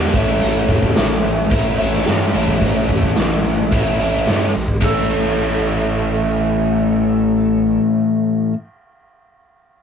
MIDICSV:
0, 0, Header, 1, 5, 480
1, 0, Start_track
1, 0, Tempo, 551471
1, 362, Time_signature, 4, 2, 24, 8
1, 8553, End_track
2, 0, Start_track
2, 0, Title_t, "Electric slide guitar"
2, 0, Program_c, 0, 29
2, 4215, Note_on_c, 0, 69, 87
2, 6788, Note_off_c, 0, 69, 0
2, 8553, End_track
3, 0, Start_track
3, 0, Title_t, "Overdriven electric guitar"
3, 0, Program_c, 1, 29
3, 0, Note_on_c, 1, 43, 57
3, 0, Note_on_c, 1, 50, 64
3, 0, Note_on_c, 1, 55, 62
3, 0, Note_on_c, 1, 59, 62
3, 0, Note_on_c, 1, 62, 63
3, 112, Note_off_c, 1, 43, 0
3, 117, Note_off_c, 1, 50, 0
3, 120, Note_on_c, 1, 45, 68
3, 121, Note_off_c, 1, 55, 0
3, 121, Note_off_c, 1, 59, 0
3, 126, Note_off_c, 1, 62, 0
3, 130, Note_on_c, 1, 52, 72
3, 135, Note_on_c, 1, 57, 84
3, 141, Note_on_c, 1, 61, 82
3, 143, Note_on_c, 1, 64, 78
3, 1308, Note_off_c, 1, 45, 0
3, 1311, Note_on_c, 1, 45, 66
3, 1318, Note_off_c, 1, 52, 0
3, 1322, Note_on_c, 1, 52, 61
3, 1323, Note_off_c, 1, 57, 0
3, 1326, Note_on_c, 1, 57, 72
3, 1329, Note_off_c, 1, 61, 0
3, 1332, Note_on_c, 1, 61, 72
3, 1334, Note_off_c, 1, 64, 0
3, 1338, Note_on_c, 1, 64, 70
3, 1550, Note_off_c, 1, 64, 0
3, 1553, Note_on_c, 1, 64, 65
3, 1559, Note_off_c, 1, 61, 0
3, 1563, Note_on_c, 1, 61, 69
3, 1567, Note_off_c, 1, 57, 0
3, 1570, Note_on_c, 1, 57, 74
3, 1574, Note_off_c, 1, 45, 0
3, 1574, Note_off_c, 1, 52, 0
3, 1577, Note_on_c, 1, 45, 58
3, 1578, Note_on_c, 1, 52, 58
3, 2030, Note_off_c, 1, 45, 0
3, 2033, Note_on_c, 1, 45, 69
3, 2040, Note_off_c, 1, 52, 0
3, 2042, Note_off_c, 1, 57, 0
3, 2044, Note_on_c, 1, 52, 73
3, 2045, Note_on_c, 1, 57, 80
3, 2049, Note_off_c, 1, 61, 0
3, 2053, Note_on_c, 1, 61, 74
3, 2055, Note_off_c, 1, 64, 0
3, 2059, Note_on_c, 1, 64, 75
3, 3218, Note_off_c, 1, 45, 0
3, 3224, Note_off_c, 1, 52, 0
3, 3224, Note_off_c, 1, 57, 0
3, 3228, Note_off_c, 1, 61, 0
3, 3231, Note_off_c, 1, 64, 0
3, 3236, Note_on_c, 1, 45, 62
3, 3247, Note_on_c, 1, 52, 69
3, 3252, Note_on_c, 1, 57, 67
3, 3257, Note_on_c, 1, 61, 65
3, 3261, Note_on_c, 1, 64, 68
3, 3461, Note_off_c, 1, 45, 0
3, 3462, Note_off_c, 1, 64, 0
3, 3466, Note_off_c, 1, 52, 0
3, 3469, Note_off_c, 1, 57, 0
3, 3471, Note_off_c, 1, 61, 0
3, 3472, Note_on_c, 1, 64, 65
3, 3483, Note_on_c, 1, 61, 64
3, 3488, Note_on_c, 1, 57, 58
3, 3496, Note_on_c, 1, 52, 57
3, 3497, Note_on_c, 1, 45, 54
3, 3939, Note_off_c, 1, 64, 0
3, 3944, Note_off_c, 1, 61, 0
3, 3947, Note_off_c, 1, 57, 0
3, 3950, Note_off_c, 1, 52, 0
3, 3951, Note_off_c, 1, 45, 0
3, 4184, Note_on_c, 1, 45, 73
3, 4198, Note_on_c, 1, 52, 61
3, 4201, Note_on_c, 1, 57, 81
3, 4210, Note_on_c, 1, 61, 82
3, 4220, Note_on_c, 1, 64, 90
3, 7417, Note_off_c, 1, 45, 0
3, 7424, Note_off_c, 1, 52, 0
3, 7425, Note_off_c, 1, 57, 0
3, 7430, Note_off_c, 1, 61, 0
3, 7435, Note_off_c, 1, 64, 0
3, 8553, End_track
4, 0, Start_track
4, 0, Title_t, "Analog synth bass"
4, 0, Program_c, 2, 38
4, 0, Note_on_c, 2, 40, 83
4, 113, Note_off_c, 2, 40, 0
4, 118, Note_on_c, 2, 33, 88
4, 351, Note_off_c, 2, 33, 0
4, 363, Note_on_c, 2, 33, 80
4, 593, Note_off_c, 2, 33, 0
4, 598, Note_on_c, 2, 40, 76
4, 830, Note_off_c, 2, 40, 0
4, 840, Note_on_c, 2, 33, 90
4, 1071, Note_off_c, 2, 33, 0
4, 1079, Note_on_c, 2, 33, 76
4, 1310, Note_off_c, 2, 33, 0
4, 1314, Note_on_c, 2, 33, 73
4, 1547, Note_off_c, 2, 33, 0
4, 1558, Note_on_c, 2, 33, 95
4, 1789, Note_off_c, 2, 33, 0
4, 1804, Note_on_c, 2, 43, 88
4, 2032, Note_off_c, 2, 43, 0
4, 2036, Note_on_c, 2, 33, 86
4, 2267, Note_off_c, 2, 33, 0
4, 2277, Note_on_c, 2, 33, 77
4, 2507, Note_off_c, 2, 33, 0
4, 2512, Note_on_c, 2, 40, 70
4, 2745, Note_off_c, 2, 40, 0
4, 2761, Note_on_c, 2, 33, 84
4, 2989, Note_off_c, 2, 33, 0
4, 2997, Note_on_c, 2, 33, 72
4, 3227, Note_off_c, 2, 33, 0
4, 3234, Note_on_c, 2, 33, 74
4, 3465, Note_off_c, 2, 33, 0
4, 3488, Note_on_c, 2, 33, 82
4, 3713, Note_off_c, 2, 33, 0
4, 3723, Note_on_c, 2, 43, 81
4, 3950, Note_off_c, 2, 43, 0
4, 3967, Note_on_c, 2, 33, 81
4, 4184, Note_off_c, 2, 33, 0
4, 4189, Note_on_c, 2, 33, 84
4, 6775, Note_off_c, 2, 33, 0
4, 8553, End_track
5, 0, Start_track
5, 0, Title_t, "Drums"
5, 121, Note_on_c, 9, 36, 86
5, 122, Note_on_c, 9, 42, 42
5, 208, Note_off_c, 9, 36, 0
5, 210, Note_off_c, 9, 42, 0
5, 360, Note_on_c, 9, 42, 73
5, 447, Note_off_c, 9, 42, 0
5, 595, Note_on_c, 9, 42, 52
5, 599, Note_on_c, 9, 36, 81
5, 682, Note_off_c, 9, 42, 0
5, 686, Note_off_c, 9, 36, 0
5, 719, Note_on_c, 9, 36, 77
5, 806, Note_off_c, 9, 36, 0
5, 837, Note_on_c, 9, 38, 108
5, 837, Note_on_c, 9, 42, 77
5, 924, Note_off_c, 9, 38, 0
5, 924, Note_off_c, 9, 42, 0
5, 1080, Note_on_c, 9, 42, 51
5, 1167, Note_off_c, 9, 42, 0
5, 1315, Note_on_c, 9, 42, 73
5, 1318, Note_on_c, 9, 36, 92
5, 1402, Note_off_c, 9, 42, 0
5, 1405, Note_off_c, 9, 36, 0
5, 1561, Note_on_c, 9, 42, 58
5, 1648, Note_off_c, 9, 42, 0
5, 1678, Note_on_c, 9, 38, 25
5, 1765, Note_off_c, 9, 38, 0
5, 1795, Note_on_c, 9, 38, 97
5, 1795, Note_on_c, 9, 42, 72
5, 1882, Note_off_c, 9, 38, 0
5, 1882, Note_off_c, 9, 42, 0
5, 2040, Note_on_c, 9, 42, 50
5, 2127, Note_off_c, 9, 42, 0
5, 2158, Note_on_c, 9, 36, 62
5, 2245, Note_off_c, 9, 36, 0
5, 2277, Note_on_c, 9, 36, 77
5, 2277, Note_on_c, 9, 42, 70
5, 2364, Note_off_c, 9, 36, 0
5, 2364, Note_off_c, 9, 42, 0
5, 2514, Note_on_c, 9, 42, 54
5, 2516, Note_on_c, 9, 36, 79
5, 2602, Note_off_c, 9, 42, 0
5, 2603, Note_off_c, 9, 36, 0
5, 2636, Note_on_c, 9, 36, 71
5, 2723, Note_off_c, 9, 36, 0
5, 2751, Note_on_c, 9, 38, 97
5, 2751, Note_on_c, 9, 42, 76
5, 2838, Note_off_c, 9, 38, 0
5, 2838, Note_off_c, 9, 42, 0
5, 2998, Note_on_c, 9, 42, 51
5, 3085, Note_off_c, 9, 42, 0
5, 3239, Note_on_c, 9, 36, 94
5, 3240, Note_on_c, 9, 42, 72
5, 3326, Note_off_c, 9, 36, 0
5, 3327, Note_off_c, 9, 42, 0
5, 3477, Note_on_c, 9, 42, 55
5, 3564, Note_off_c, 9, 42, 0
5, 3719, Note_on_c, 9, 38, 84
5, 3719, Note_on_c, 9, 42, 67
5, 3806, Note_off_c, 9, 38, 0
5, 3806, Note_off_c, 9, 42, 0
5, 3955, Note_on_c, 9, 42, 45
5, 4042, Note_off_c, 9, 42, 0
5, 4075, Note_on_c, 9, 36, 63
5, 4162, Note_off_c, 9, 36, 0
5, 4194, Note_on_c, 9, 53, 66
5, 4195, Note_on_c, 9, 36, 89
5, 4281, Note_off_c, 9, 53, 0
5, 4282, Note_off_c, 9, 36, 0
5, 8553, End_track
0, 0, End_of_file